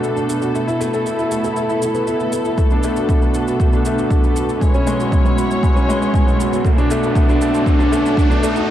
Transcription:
0.00 4.58 B2 medium
0.00 0.04 A3 medium
0.00 0.11 A3 medium
0.00 8.64 B3 medium
0.00 0.16 D4 loud
0.00 0.53 D4 medium
0.00 0.42 F#4 medium
0.00 4.58 A4 medium
0.00 shaker soft
0.16 0.29 D4 medium
0.16 shaker soft
0.29 0.41 A3 medium
0.29 shaker medium
0.42 0.54 F#4 medium
0.42 shaker soft
0.54 0.67 A3 medium
0.54 2.56 E4 medium
0.54 shaker soft
0.67 0.80 E4 medium
0.67 shaker soft
0.80 0.93 A3 loud
0.80 shaker medium
0.94 1.01 A4 medium
0.94 shaker soft
1.06 1.18 A3 medium
1.06 shaker soft
1.19 1.31 E4 medium
1.19 shaker soft
1.31 1.44 A3 medium
1.31 shaker medium
1.44 1.56 A4 medium
1.44 shaker soft
1.56 1.64 A3 medium
1.56 shaker soft
1.69 1.80 E4 medium
1.69 shaker soft
1.82 1.89 E4 medium
1.82 shaker medium
1.94 2.07 B3 medium
1.94 shaker soft
2.07 2.19 E4 medium
2.07 shaker soft
2.20 2.28 A3 medium
2.20 shaker soft
2.32 2.45 A3 medium
2.32 shaker medium
2.45 2.58 E4 medium
2.45 shaker soft
2.57 2.71 A3 medium
2.57 4.59 D4 medium
2.57 kick medium
2.57 riser medium
2.57 shaker soft
2.70 2.84 D4 medium
2.70 shaker soft
2.83 2.96 A3 medium
2.83 shaker medium
2.96 3.04 F#4 medium
2.96 shaker soft
3.09 3.22 A3 medium
3.09 kick loud
3.09 shaker soft
3.22 3.34 D4 medium
3.22 shaker soft
3.34 3.46 F#4 medium
3.34 shaker medium
3.48 3.58 F#4 medium
3.48 shaker soft
3.60 3.73 A3 medium
3.60 kick medium
3.60 shaker soft
3.73 3.85 D4 medium
3.73 shaker soft
3.85 3.98 A3 medium
3.85 shaker medium
3.98 4.06 F#4 medium
3.98 shaker soft
4.11 4.23 A3 medium
4.11 kick loud
4.11 shaker soft
4.24 4.36 D4 medium
4.24 shaker soft
4.36 4.48 F#4 medium
4.36 shaker medium
4.49 4.60 F#4 medium
4.49 shaker soft
4.61 8.65 B2 medium
4.61 4.74 G#3 medium
4.61 6.63 E4 medium
4.61 6.64 C#5 medium
4.61 kick medium
4.61 shaker soft
4.74 4.87 C#4 medium
4.74 shaker soft
4.87 4.99 G#3 medium
4.87 shaker medium
5.00 5.07 F#4 medium
5.00 shaker soft
5.12 5.25 G#3 medium
5.12 kick loud
5.12 shaker soft
5.26 5.38 C#4 medium
5.26 shaker soft
5.38 5.49 F#4 medium
5.38 shaker medium
5.50 5.61 F#4 medium
5.50 shaker soft
5.63 5.75 G#3 medium
5.63 kick medium
5.63 shaker soft
5.76 5.88 C#4 medium
5.76 shaker soft
5.89 6.01 G#3 medium
5.89 shaker medium
6.01 6.09 F#4 medium
6.01 shaker soft
6.14 6.26 G#3 medium
6.14 kick medium
6.14 shaker soft
6.27 6.39 C#4 medium
6.27 shaker soft
6.40 6.51 F#4 medium
6.40 shaker medium
6.52 6.63 F#4 medium
6.52 shaker soft
6.64 6.77 A3 medium
6.64 8.66 D4 medium
6.64 8.71 A4 medium
6.64 kick medium
6.64 shaker soft
6.78 6.90 D4 loud
6.78 shaker soft
6.91 7.03 A3 loud
6.91 shaker medium
7.03 7.11 F#4 medium
7.03 shaker soft
7.15 7.28 A3 medium
7.15 kick loud
7.15 shaker soft
7.29 7.41 D4 loud
7.29 shaker soft
7.41 7.54 A3 medium
7.41 shaker medium
7.54 7.61 F#4 medium
7.54 shaker soft
7.66 7.79 A3 medium
7.66 kick loud
7.66 shaker soft
7.79 7.91 D4 loud
7.79 shaker soft
7.92 8.04 A3 loud
7.92 shaker medium
8.05 8.12 F#4 medium
8.05 shaker soft
8.17 8.30 A3 medium
8.17 kick medium
8.17 shaker soft
8.30 8.42 D4 loud
8.30 shaker soft
8.43 8.55 A3 loud
8.43 shaker medium
8.56 8.63 F#4 medium
8.56 shaker soft

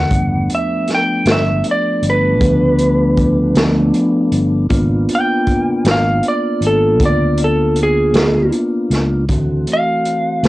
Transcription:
0.00 0.50 F#5 medium
0.11 0.47 G1 medium
0.11 4.66 F3 medium
0.11 4.67 A3 medium
0.11 4.66 B3 medium
0.11 4.67 D4 medium
0.11 kick medium
0.11 closed hi-hat medium
0.50 closed hi-hat medium
0.55 0.90 E5 medium
0.88 snare soft
0.88 closed hi-hat medium
0.95 1.29 G5 medium
1.26 1.61 G1 medium
1.26 snare medium
1.26 closed hi-hat medium
1.32 1.66 E5 medium
1.64 closed hi-hat medium
1.71 2.05 D5 medium
2.02 2.41 G1 medium
2.02 closed hi-hat medium
2.10 3.55 B4 medium
2.41 3.52 D2 medium
2.41 kick medium
2.41 closed hi-hat medium
2.79 closed hi-hat medium
3.17 kick medium
3.17 closed hi-hat soft
3.55 3.90 D2 medium
3.55 snare medium
3.55 closed hi-hat medium
3.94 closed hi-hat soft
4.32 4.67 G1 medium
4.32 closed hi-hat soft
4.69 5.06 G#1 medium
4.69 9.25 A#3 medium
4.69 9.25 B3 medium
4.69 9.25 D4 medium
4.69 9.25 F4 medium
4.69 kick loud
4.69 closed hi-hat medium
5.09 closed hi-hat soft
5.15 5.86 G5 medium
5.47 kick medium
5.47 closed hi-hat soft
5.85 6.20 G#1 medium
5.85 snare medium
5.85 closed hi-hat medium
5.91 6.25 F5 medium
6.23 closed hi-hat medium
6.28 6.63 D5 medium
6.61 7.00 G#1 medium
6.61 closed hi-hat medium
6.67 7.01 A4 medium
7.00 8.11 D2 medium
7.00 kick loud
7.00 closed hi-hat medium
7.05 7.40 D5 medium
7.38 closed hi-hat medium
7.44 7.78 A4 medium
7.76 closed hi-hat medium
7.83 8.54 G#4 medium
8.13 8.49 D2 medium
8.13 snare medium
8.13 closed hi-hat medium
8.52 closed hi-hat soft
8.90 9.26 C#2 medium
8.90 snare soft
8.90 closed hi-hat medium
9.28 9.64 D2 medium
9.28 10.48 E3 medium
9.28 10.48 A3 medium
9.28 10.48 C4 medium
9.28 10.48 F#4 medium
9.28 kick medium
9.28 closed hi-hat medium
9.67 closed hi-hat medium
9.73 10.45 F5 medium
10.05 closed hi-hat soft
10.43 10.48 D2 medium
10.43 closed hi-hat medium

